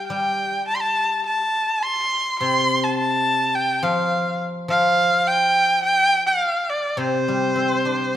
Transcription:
0.07 G3 G5
0.68 A5
0.76 C6
0.81 A5
1.26 A5
1.83 C6
2.39 C3 C6
2.83 A5
2.98 A5
3.55 G5
3.83 F3 F5
4.68 F3 F5
5.28 G5
5.84 G5
6.27 F5
6.70 D5
6.97 C3 C5
7.28 G3
7.56 C4
7.85 D4

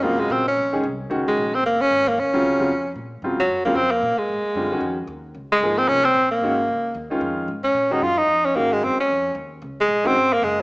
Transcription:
0.03 G#2 C#3 F#3 A#3 C4 F4
0.20 G#3
0.30 A#2 C4
0.48 C#4
0.57 A#1
0.73 D#3 G#3 C#4 G#4
0.83 C2
1.10 C#2 D#3 G#3 C#4 F#4
1.28 G#3
1.37 A#1
1.55 C4
1.63 F#1 A#3
1.81 C#4
1.91 G#1
2.08 A#3
2.17 D#2 C#4
2.33 C#3 F#3 C4 F4
2.43 C#2
2.59 C#3 F#3 C4 F4
2.69 F2
2.96 A#2
3.22 G#2 C#3 F#3 C4 F4
3.40 F#3
3.49 F#2
3.65 C#3 F#3 A#3 C4 F4
3.75 F2 C4
3.91 A#3
4.03 A#2
4.18 G#3, muted upright bass stroke
4.29 G#2
4.44 muted upright bass stroke
4.55 F#2 D3 G3 C4 F4
4.71 D#3 G#3 C#4 F#4
4.81 F2
5.07 D#2
5.35 C#2
5.52 G#3
5.61 G#1 F3 A#3 D#4 G#4
5.78 C4
5.87 C2 C#4
6.05 C4
6.14 A#1
6.31 A#3
6.41 G#1 D#3 G#3 C#4 F#4
6.68 C#2
6.95 D#2
7.10 D#3 G#3 C#4 F4
7.21 F2
7.48 G#2
7.64 C#4
7.74 A#2
7.91 D#3 G#3 C#4 D#4 F#4
8.02 F#2 F4
8.18 D#4
8.28 F2
8.45 C#4
8.54 G#2 D#3 G#3 A#3 C#4 F#4
8.73 G#3
8.81 F#2 C4
8.97 C#4, muted upright bass stroke
9.08 F2
9.35 D#2
9.62 C#2
9.81 G#3
9.88 A#1
10.04 D#3 G#3 C4 C#4 F#4
10.15 G#1
10.33 A#3
10.41 F#1 G#3

